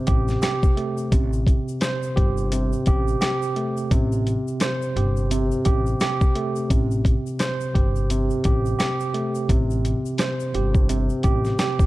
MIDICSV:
0, 0, Header, 1, 4, 480
1, 0, Start_track
1, 0, Key_signature, 0, "minor"
1, 0, Tempo, 697674
1, 771, Time_signature, 4, 2, 24, 8
1, 8162, End_track
2, 0, Start_track
2, 0, Title_t, "Tine electric piano"
2, 0, Program_c, 0, 4
2, 0, Control_c, 0, 64, 127
2, 0, Note_on_c, 0, 48, 92
2, 0, Note_on_c, 0, 67, 75
2, 0, Note_on_c, 0, 72, 96
2, 48, Note_off_c, 0, 67, 0
2, 48, Note_on_c, 0, 67, 80
2, 282, Note_off_c, 0, 67, 0
2, 290, Note_on_c, 0, 67, 86
2, 291, Note_off_c, 0, 72, 0
2, 528, Note_on_c, 0, 57, 78
2, 757, Note_off_c, 0, 48, 0
2, 766, Note_on_c, 0, 48, 91
2, 770, Note_off_c, 0, 57, 0
2, 771, Note_off_c, 0, 67, 0
2, 780, Control_c, 0, 64, 0
2, 893, Control_c, 0, 64, 127
2, 1248, Note_on_c, 0, 72, 103
2, 1487, Note_on_c, 0, 67, 82
2, 1729, Note_off_c, 0, 48, 0
2, 1741, Note_on_c, 0, 48, 89
2, 1972, Note_off_c, 0, 67, 0
2, 1980, Note_on_c, 0, 67, 84
2, 2200, Note_off_c, 0, 67, 0
2, 2208, Note_on_c, 0, 67, 88
2, 2210, Note_off_c, 0, 72, 0
2, 2451, Note_on_c, 0, 57, 75
2, 2686, Note_off_c, 0, 48, 0
2, 2690, Note_off_c, 0, 67, 0
2, 2691, Note_off_c, 0, 57, 0
2, 2694, Note_on_c, 0, 48, 100
2, 2701, Control_c, 0, 64, 0
2, 2816, Control_c, 0, 64, 127
2, 3174, Note_on_c, 0, 72, 97
2, 3417, Note_on_c, 0, 67, 74
2, 3646, Note_off_c, 0, 48, 0
2, 3655, Note_on_c, 0, 48, 88
2, 3882, Note_off_c, 0, 67, 0
2, 3890, Note_on_c, 0, 67, 83
2, 4125, Note_off_c, 0, 67, 0
2, 4133, Note_off_c, 0, 72, 0
2, 4133, Note_on_c, 0, 67, 88
2, 4372, Note_on_c, 0, 57, 82
2, 4602, Note_off_c, 0, 48, 0
2, 4610, Note_on_c, 0, 48, 90
2, 4612, Note_off_c, 0, 57, 0
2, 4612, Note_off_c, 0, 67, 0
2, 4620, Control_c, 0, 64, 0
2, 4752, Control_c, 0, 64, 127
2, 5090, Note_on_c, 0, 72, 102
2, 5328, Note_on_c, 0, 67, 81
2, 5569, Note_off_c, 0, 48, 0
2, 5577, Note_on_c, 0, 48, 91
2, 5807, Note_off_c, 0, 67, 0
2, 5815, Note_on_c, 0, 67, 81
2, 6037, Note_off_c, 0, 67, 0
2, 6045, Note_on_c, 0, 67, 85
2, 6051, Note_off_c, 0, 72, 0
2, 6288, Note_on_c, 0, 57, 76
2, 6524, Note_off_c, 0, 48, 0
2, 6528, Note_off_c, 0, 67, 0
2, 6530, Note_off_c, 0, 57, 0
2, 6532, Note_on_c, 0, 48, 102
2, 6540, Control_c, 0, 64, 0
2, 6675, Control_c, 0, 64, 127
2, 7011, Note_on_c, 0, 72, 93
2, 7258, Note_on_c, 0, 67, 75
2, 7487, Note_off_c, 0, 48, 0
2, 7495, Note_on_c, 0, 48, 87
2, 7724, Note_off_c, 0, 67, 0
2, 7732, Note_on_c, 0, 67, 85
2, 7965, Note_off_c, 0, 67, 0
2, 7971, Note_off_c, 0, 72, 0
2, 7973, Note_on_c, 0, 67, 86
2, 8162, Note_off_c, 0, 48, 0
2, 8162, Note_off_c, 0, 67, 0
2, 8162, End_track
3, 0, Start_track
3, 0, Title_t, "Upright bass"
3, 0, Program_c, 1, 32
3, 54, Note_on_c, 1, 33, 94
3, 237, Note_off_c, 1, 33, 0
3, 771, Note_on_c, 1, 33, 108
3, 1064, Note_off_c, 1, 33, 0
3, 1495, Note_on_c, 1, 31, 89
3, 1862, Note_off_c, 1, 31, 0
3, 1975, Note_on_c, 1, 33, 95
3, 2158, Note_off_c, 1, 33, 0
3, 2692, Note_on_c, 1, 33, 108
3, 2984, Note_off_c, 1, 33, 0
3, 3412, Note_on_c, 1, 31, 90
3, 3780, Note_off_c, 1, 31, 0
3, 3895, Note_on_c, 1, 33, 92
3, 4078, Note_off_c, 1, 33, 0
3, 4612, Note_on_c, 1, 33, 107
3, 4904, Note_off_c, 1, 33, 0
3, 5334, Note_on_c, 1, 31, 90
3, 5701, Note_off_c, 1, 31, 0
3, 5815, Note_on_c, 1, 33, 96
3, 5998, Note_off_c, 1, 33, 0
3, 6531, Note_on_c, 1, 33, 104
3, 6824, Note_off_c, 1, 33, 0
3, 7251, Note_on_c, 1, 31, 88
3, 7620, Note_off_c, 1, 31, 0
3, 7735, Note_on_c, 1, 33, 91
3, 7918, Note_off_c, 1, 33, 0
3, 8162, End_track
4, 0, Start_track
4, 0, Title_t, "Drums"
4, 48, Note_on_c, 9, 42, 71
4, 48, Note_on_c, 9, 82, 47
4, 55, Note_on_c, 9, 36, 95
4, 116, Note_off_c, 9, 42, 0
4, 116, Note_off_c, 9, 82, 0
4, 124, Note_off_c, 9, 36, 0
4, 192, Note_on_c, 9, 82, 51
4, 197, Note_on_c, 9, 38, 36
4, 261, Note_off_c, 9, 82, 0
4, 266, Note_off_c, 9, 38, 0
4, 289, Note_on_c, 9, 82, 65
4, 294, Note_on_c, 9, 42, 98
4, 295, Note_on_c, 9, 38, 120
4, 301, Note_on_c, 9, 37, 100
4, 357, Note_off_c, 9, 82, 0
4, 363, Note_off_c, 9, 42, 0
4, 364, Note_off_c, 9, 38, 0
4, 370, Note_off_c, 9, 37, 0
4, 432, Note_on_c, 9, 82, 52
4, 434, Note_on_c, 9, 36, 103
4, 501, Note_off_c, 9, 82, 0
4, 503, Note_off_c, 9, 36, 0
4, 532, Note_on_c, 9, 42, 67
4, 601, Note_off_c, 9, 42, 0
4, 670, Note_on_c, 9, 82, 57
4, 739, Note_off_c, 9, 82, 0
4, 771, Note_on_c, 9, 36, 121
4, 772, Note_on_c, 9, 42, 108
4, 773, Note_on_c, 9, 82, 61
4, 840, Note_off_c, 9, 36, 0
4, 841, Note_off_c, 9, 42, 0
4, 841, Note_off_c, 9, 82, 0
4, 914, Note_on_c, 9, 82, 53
4, 983, Note_off_c, 9, 82, 0
4, 1009, Note_on_c, 9, 36, 97
4, 1015, Note_on_c, 9, 42, 72
4, 1018, Note_on_c, 9, 82, 48
4, 1078, Note_off_c, 9, 36, 0
4, 1084, Note_off_c, 9, 42, 0
4, 1086, Note_off_c, 9, 82, 0
4, 1158, Note_on_c, 9, 82, 52
4, 1227, Note_off_c, 9, 82, 0
4, 1245, Note_on_c, 9, 42, 90
4, 1252, Note_on_c, 9, 38, 107
4, 1253, Note_on_c, 9, 82, 80
4, 1257, Note_on_c, 9, 37, 83
4, 1314, Note_off_c, 9, 42, 0
4, 1320, Note_off_c, 9, 38, 0
4, 1322, Note_off_c, 9, 82, 0
4, 1326, Note_off_c, 9, 37, 0
4, 1395, Note_on_c, 9, 82, 51
4, 1464, Note_off_c, 9, 82, 0
4, 1494, Note_on_c, 9, 36, 91
4, 1496, Note_on_c, 9, 42, 63
4, 1563, Note_off_c, 9, 36, 0
4, 1564, Note_off_c, 9, 42, 0
4, 1633, Note_on_c, 9, 82, 46
4, 1702, Note_off_c, 9, 82, 0
4, 1733, Note_on_c, 9, 42, 108
4, 1740, Note_on_c, 9, 82, 76
4, 1801, Note_off_c, 9, 42, 0
4, 1808, Note_off_c, 9, 82, 0
4, 1876, Note_on_c, 9, 82, 48
4, 1944, Note_off_c, 9, 82, 0
4, 1967, Note_on_c, 9, 42, 74
4, 1972, Note_on_c, 9, 82, 47
4, 1975, Note_on_c, 9, 36, 94
4, 2036, Note_off_c, 9, 42, 0
4, 2041, Note_off_c, 9, 82, 0
4, 2044, Note_off_c, 9, 36, 0
4, 2117, Note_on_c, 9, 82, 52
4, 2186, Note_off_c, 9, 82, 0
4, 2210, Note_on_c, 9, 82, 68
4, 2213, Note_on_c, 9, 42, 96
4, 2215, Note_on_c, 9, 38, 124
4, 2220, Note_on_c, 9, 37, 101
4, 2278, Note_off_c, 9, 82, 0
4, 2282, Note_off_c, 9, 42, 0
4, 2284, Note_off_c, 9, 38, 0
4, 2289, Note_off_c, 9, 37, 0
4, 2354, Note_on_c, 9, 82, 54
4, 2423, Note_off_c, 9, 82, 0
4, 2451, Note_on_c, 9, 42, 68
4, 2520, Note_off_c, 9, 42, 0
4, 2594, Note_on_c, 9, 82, 58
4, 2663, Note_off_c, 9, 82, 0
4, 2692, Note_on_c, 9, 36, 120
4, 2693, Note_on_c, 9, 42, 109
4, 2695, Note_on_c, 9, 82, 61
4, 2760, Note_off_c, 9, 36, 0
4, 2761, Note_off_c, 9, 42, 0
4, 2764, Note_off_c, 9, 82, 0
4, 2836, Note_on_c, 9, 82, 55
4, 2905, Note_off_c, 9, 82, 0
4, 2936, Note_on_c, 9, 42, 68
4, 2939, Note_on_c, 9, 82, 48
4, 3005, Note_off_c, 9, 42, 0
4, 3008, Note_off_c, 9, 82, 0
4, 3080, Note_on_c, 9, 82, 54
4, 3149, Note_off_c, 9, 82, 0
4, 3166, Note_on_c, 9, 42, 91
4, 3172, Note_on_c, 9, 38, 106
4, 3173, Note_on_c, 9, 82, 78
4, 3178, Note_on_c, 9, 37, 84
4, 3234, Note_off_c, 9, 42, 0
4, 3241, Note_off_c, 9, 38, 0
4, 3242, Note_off_c, 9, 82, 0
4, 3246, Note_off_c, 9, 37, 0
4, 3316, Note_on_c, 9, 82, 53
4, 3385, Note_off_c, 9, 82, 0
4, 3417, Note_on_c, 9, 42, 64
4, 3485, Note_off_c, 9, 42, 0
4, 3554, Note_on_c, 9, 82, 44
4, 3623, Note_off_c, 9, 82, 0
4, 3654, Note_on_c, 9, 42, 108
4, 3657, Note_on_c, 9, 82, 75
4, 3723, Note_off_c, 9, 42, 0
4, 3726, Note_off_c, 9, 82, 0
4, 3794, Note_on_c, 9, 82, 48
4, 3863, Note_off_c, 9, 82, 0
4, 3888, Note_on_c, 9, 42, 76
4, 3890, Note_on_c, 9, 82, 49
4, 3895, Note_on_c, 9, 36, 95
4, 3957, Note_off_c, 9, 42, 0
4, 3959, Note_off_c, 9, 82, 0
4, 3964, Note_off_c, 9, 36, 0
4, 4034, Note_on_c, 9, 82, 50
4, 4102, Note_off_c, 9, 82, 0
4, 4130, Note_on_c, 9, 82, 65
4, 4134, Note_on_c, 9, 42, 93
4, 4135, Note_on_c, 9, 38, 124
4, 4141, Note_on_c, 9, 37, 104
4, 4198, Note_off_c, 9, 82, 0
4, 4203, Note_off_c, 9, 42, 0
4, 4204, Note_off_c, 9, 38, 0
4, 4210, Note_off_c, 9, 37, 0
4, 4273, Note_on_c, 9, 82, 53
4, 4274, Note_on_c, 9, 36, 105
4, 4342, Note_off_c, 9, 82, 0
4, 4343, Note_off_c, 9, 36, 0
4, 4372, Note_on_c, 9, 42, 71
4, 4440, Note_off_c, 9, 42, 0
4, 4512, Note_on_c, 9, 82, 58
4, 4581, Note_off_c, 9, 82, 0
4, 4611, Note_on_c, 9, 36, 119
4, 4613, Note_on_c, 9, 42, 109
4, 4614, Note_on_c, 9, 82, 62
4, 4680, Note_off_c, 9, 36, 0
4, 4681, Note_off_c, 9, 42, 0
4, 4683, Note_off_c, 9, 82, 0
4, 4755, Note_on_c, 9, 82, 52
4, 4824, Note_off_c, 9, 82, 0
4, 4849, Note_on_c, 9, 36, 100
4, 4856, Note_on_c, 9, 42, 69
4, 4859, Note_on_c, 9, 82, 46
4, 4918, Note_off_c, 9, 36, 0
4, 4925, Note_off_c, 9, 42, 0
4, 4927, Note_off_c, 9, 82, 0
4, 4997, Note_on_c, 9, 82, 55
4, 5066, Note_off_c, 9, 82, 0
4, 5086, Note_on_c, 9, 42, 89
4, 5093, Note_on_c, 9, 38, 106
4, 5094, Note_on_c, 9, 82, 81
4, 5098, Note_on_c, 9, 37, 88
4, 5155, Note_off_c, 9, 42, 0
4, 5162, Note_off_c, 9, 38, 0
4, 5163, Note_off_c, 9, 82, 0
4, 5167, Note_off_c, 9, 37, 0
4, 5234, Note_on_c, 9, 82, 52
4, 5302, Note_off_c, 9, 82, 0
4, 5334, Note_on_c, 9, 36, 95
4, 5336, Note_on_c, 9, 42, 62
4, 5403, Note_off_c, 9, 36, 0
4, 5405, Note_off_c, 9, 42, 0
4, 5475, Note_on_c, 9, 82, 45
4, 5544, Note_off_c, 9, 82, 0
4, 5573, Note_on_c, 9, 42, 107
4, 5578, Note_on_c, 9, 82, 76
4, 5642, Note_off_c, 9, 42, 0
4, 5647, Note_off_c, 9, 82, 0
4, 5713, Note_on_c, 9, 82, 49
4, 5781, Note_off_c, 9, 82, 0
4, 5807, Note_on_c, 9, 42, 77
4, 5811, Note_on_c, 9, 82, 49
4, 5815, Note_on_c, 9, 36, 94
4, 5875, Note_off_c, 9, 42, 0
4, 5880, Note_off_c, 9, 82, 0
4, 5884, Note_off_c, 9, 36, 0
4, 5955, Note_on_c, 9, 82, 53
4, 6024, Note_off_c, 9, 82, 0
4, 6050, Note_on_c, 9, 82, 67
4, 6054, Note_on_c, 9, 42, 98
4, 6055, Note_on_c, 9, 38, 126
4, 6060, Note_on_c, 9, 37, 101
4, 6119, Note_off_c, 9, 82, 0
4, 6122, Note_off_c, 9, 42, 0
4, 6124, Note_off_c, 9, 38, 0
4, 6129, Note_off_c, 9, 37, 0
4, 6193, Note_on_c, 9, 82, 56
4, 6262, Note_off_c, 9, 82, 0
4, 6291, Note_on_c, 9, 42, 69
4, 6360, Note_off_c, 9, 42, 0
4, 6432, Note_on_c, 9, 82, 58
4, 6501, Note_off_c, 9, 82, 0
4, 6531, Note_on_c, 9, 36, 121
4, 6533, Note_on_c, 9, 42, 111
4, 6534, Note_on_c, 9, 82, 62
4, 6600, Note_off_c, 9, 36, 0
4, 6602, Note_off_c, 9, 42, 0
4, 6603, Note_off_c, 9, 82, 0
4, 6676, Note_on_c, 9, 82, 55
4, 6745, Note_off_c, 9, 82, 0
4, 6776, Note_on_c, 9, 42, 71
4, 6780, Note_on_c, 9, 82, 49
4, 6845, Note_off_c, 9, 42, 0
4, 6849, Note_off_c, 9, 82, 0
4, 6919, Note_on_c, 9, 82, 55
4, 6988, Note_off_c, 9, 82, 0
4, 7006, Note_on_c, 9, 42, 90
4, 7013, Note_on_c, 9, 38, 112
4, 7014, Note_on_c, 9, 82, 80
4, 7018, Note_on_c, 9, 37, 86
4, 7075, Note_off_c, 9, 42, 0
4, 7082, Note_off_c, 9, 38, 0
4, 7083, Note_off_c, 9, 82, 0
4, 7087, Note_off_c, 9, 37, 0
4, 7156, Note_on_c, 9, 82, 53
4, 7225, Note_off_c, 9, 82, 0
4, 7255, Note_on_c, 9, 42, 64
4, 7324, Note_off_c, 9, 42, 0
4, 7393, Note_on_c, 9, 36, 93
4, 7393, Note_on_c, 9, 82, 45
4, 7462, Note_off_c, 9, 36, 0
4, 7462, Note_off_c, 9, 82, 0
4, 7494, Note_on_c, 9, 42, 106
4, 7497, Note_on_c, 9, 82, 75
4, 7563, Note_off_c, 9, 42, 0
4, 7566, Note_off_c, 9, 82, 0
4, 7634, Note_on_c, 9, 82, 50
4, 7702, Note_off_c, 9, 82, 0
4, 7727, Note_on_c, 9, 42, 76
4, 7733, Note_on_c, 9, 82, 48
4, 7735, Note_on_c, 9, 36, 93
4, 7796, Note_off_c, 9, 42, 0
4, 7802, Note_off_c, 9, 82, 0
4, 7804, Note_off_c, 9, 36, 0
4, 7875, Note_on_c, 9, 82, 49
4, 7877, Note_on_c, 9, 38, 36
4, 7944, Note_off_c, 9, 82, 0
4, 7945, Note_off_c, 9, 38, 0
4, 7972, Note_on_c, 9, 82, 65
4, 7973, Note_on_c, 9, 42, 92
4, 7975, Note_on_c, 9, 38, 122
4, 7980, Note_on_c, 9, 37, 99
4, 8040, Note_off_c, 9, 82, 0
4, 8042, Note_off_c, 9, 42, 0
4, 8043, Note_off_c, 9, 38, 0
4, 8049, Note_off_c, 9, 37, 0
4, 8114, Note_on_c, 9, 36, 102
4, 8117, Note_on_c, 9, 82, 55
4, 8162, Note_off_c, 9, 36, 0
4, 8162, Note_off_c, 9, 82, 0
4, 8162, End_track
0, 0, End_of_file